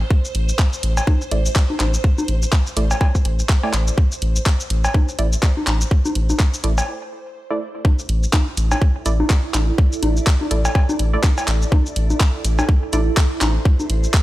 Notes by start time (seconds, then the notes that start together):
Already playing: C5
0.10 kick
0.25 shaker
0.35 A1, open hi-hat
0.49 shaker
0.59 kick, clap
0.73 shaker
0.83 A1, open hi-hat
0.97 cowbell, shaker
1.07 kick, low bongo
1.22 shaker
1.31 A1 A3 E4 D5, open hi-hat
1.46 shaker
1.56 kick, clap
1.70 low bongo
1.80 A1, clap, open hi-hat, low bongo
1.94 shaker
2.04 kick
2.18 low bongo, shaker
2.28 A1, open hi-hat
2.43 shaker
2.52 kick, clap
2.67 shaker
2.77 A1 A3 E4 D5, open hi-hat
2.91 cowbell, shaker
3.01 kick, cowbell
3.15 kick, shaker
3.25 A1, open hi-hat
3.39 shaker
3.49 kick, clap
3.63 A3 E4 D5, cowbell
3.73 A1, clap, open hi-hat
3.88 shaker
3.98 kick
4.12 shaker
4.22 A1, open hi-hat
4.36 shaker
4.46 kick, clap
4.60 shaker
4.70 A1, open hi-hat
4.85 cowbell, shaker
4.94 kick, low bongo
5.09 shaker
5.19 A1 A3 E4 D5, open hi-hat
5.33 shaker
5.43 kick, clap
5.57 low bongo
5.67 A1, clap, open hi-hat, low bongo
5.81 shaker
5.91 kick
6.05 low bongo, shaker
6.15 A1, open hi-hat
6.30 low bongo, shaker
6.40 kick, clap
6.54 shaker
6.64 A1 A3 E4 D5, open hi-hat
6.78 cowbell, shaker
7.51 A3 E4 D5
7.85 E4, kick, low bongo
7.99 shaker
8.09 A1, open hi-hat
8.23 shaker
8.33 kick, clap, low bongo
8.41 A4 D5
8.57 A1, open hi-hat, shaker
8.72 cowbell, low bongo, shaker
8.82 kick
9.06 A1 A3 E4 D5, open hi-hat, shaker
9.20 low bongo
9.30 kick, clap
9.54 A1, clap, open hi-hat, low bongo, shaker
9.78 kick
9.93 shaker
10.03 A1, open hi-hat, low bongo
10.17 shaker
10.27 kick, clap
10.41 low bongo
10.51 A1 A3 E4 D5, open hi-hat
10.65 cowbell, shaker
10.75 kick, cowbell
10.89 low bongo, shaker
10.99 A1, open hi-hat
11.14 A3 E4 D5
11.24 kick, clap, low bongo
11.38 cowbell, shaker
11.48 A1, clap, open hi-hat
11.62 shaker
11.72 kick, low bongo
11.86 shaker
11.96 A1, open hi-hat
12.10 low bongo, shaker
12.20 kick, clap
12.28 C5
12.44 A1, open hi-hat, shaker
12.59 cowbell, low bongo, shaker
12.69 kick
12.93 A1 A3 E4 D5, open hi-hat, low bongo, shaker
13.17 kick, clap
13.41 A1, clap, open hi-hat, low bongo, shaker
13.65 kick
13.80 low bongo, shaker
13.90 A1, open hi-hat
14.04 shaker
14.14 kick, clap